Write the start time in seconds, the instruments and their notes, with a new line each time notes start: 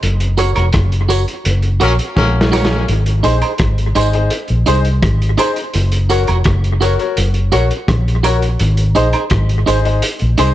0.03 fingered electric bass F#1, closed hi-hat
0.20 closed hi-hat
0.38 clean electric guitar F#4 A#4 C#5, closed hi-hat, tambourine
0.55 fingered electric bass F1, clean electric guitar F#4 A#4 C#5, closed hi-hat, high woodblock
0.73 fingered electric bass F#1, kick, cross-stick, closed hi-hat
0.92 closed hi-hat
1.09 clean electric guitar F#4 A#4 C#5, closed hi-hat, tambourine
1.28 closed hi-hat
1.45 fingered electric bass F#1, closed hi-hat
1.62 closed hi-hat
1.80 fingered electric bass A#1, horn section F#3 A#3 C#4, clean electric guitar F#4 A#4 C#5, closed hi-hat, tambourine
1.99 closed hi-hat
2.16 fingered electric bass A#1, horn section F#3 A#3 C#4, kick, snare
2.41 snare
2.52 clean electric guitar F#4 A#4 C#5, snare, tambourine, high woodblock
2.65 snare
2.88 fingered electric bass G#1, closed hi-hat
3.06 closed hi-hat
3.23 fingered electric bass A#1, clean electric guitar D#4 G#4 C5, upright piano D#4 G#4 C5, closed hi-hat, tambourine
3.42 clean electric guitar D#4 G#4 C5, closed hi-hat, high woodblock
3.58 fingered electric bass G#1, kick, cross-stick, closed hi-hat
3.78 closed hi-hat
3.95 fingered electric bass G#1, clean electric guitar D#4 G#4 C5, upright piano D#4 G#4 C5, closed hi-hat, tambourine
4.13 upright piano D#4 G#4 C5, closed hi-hat
4.30 closed hi-hat
4.48 fingered electric bass A#1, closed hi-hat
4.66 fingered electric bass C2, clean electric guitar D#4 G#4 C5, upright piano D#4 G#4 C5, closed hi-hat, tambourine
4.85 closed hi-hat
5.03 fingered electric bass G#1, kick, cross-stick, closed hi-hat
5.22 closed hi-hat
5.38 clean electric guitar D#4 G#4 C5, upright piano D#4 G#4 C5, closed hi-hat, tambourine, high woodblock
5.56 closed hi-hat
5.74 fingered electric bass F#1, closed hi-hat
5.92 closed hi-hat
6.10 clean electric guitar F#4 A#4 C#5, upright piano F#4 A#4 C#5, closed hi-hat, tambourine
6.27 fingered electric bass F1, clean electric guitar F#4 A#4 C#5, closed hi-hat, high woodblock
6.44 fingered electric bass F#1, kick, cross-stick, closed hi-hat
6.64 closed hi-hat
6.81 clean electric guitar F#4 A#4 C#5, upright piano F#4 A#4 C#5, closed hi-hat, tambourine
6.99 upright piano F#4 A#4 C#5, closed hi-hat
7.17 fingered electric bass F#1, closed hi-hat
7.34 closed hi-hat
7.52 fingered electric bass A#1, clean electric guitar F#4 A#4 C#5, upright piano F#4 A#4 C#5, closed hi-hat, tambourine
7.71 closed hi-hat
7.88 fingered electric bass A#1, kick, cross-stick, closed hi-hat
8.08 closed hi-hat
8.23 clean electric guitar F#4 A#4 C#5, upright piano F#4 A#4 C#5, closed hi-hat, tambourine, high woodblock
8.42 closed hi-hat
8.59 fingered electric bass G#1, closed hi-hat
8.77 closed hi-hat
8.95 fingered electric bass A#1, clean electric guitar D#4 G#4 C5, upright piano D#4 G#4 C5, closed hi-hat, tambourine
9.13 clean electric guitar D#4 G#4 C5, closed hi-hat, high woodblock
9.30 fingered electric bass G#1, kick, cross-stick, closed hi-hat
9.49 closed hi-hat
9.66 fingered electric bass G#1, clean electric guitar D#4 G#4 C5, upright piano D#4 G#4 C5, closed hi-hat, tambourine
9.85 upright piano D#4 G#4 C5, closed hi-hat
10.02 closed hi-hat
10.19 fingered electric bass A#1, closed hi-hat
10.38 fingered electric bass C2, clean electric guitar D#4 G#4 C5, upright piano D#4 G#4 C5, closed hi-hat, tambourine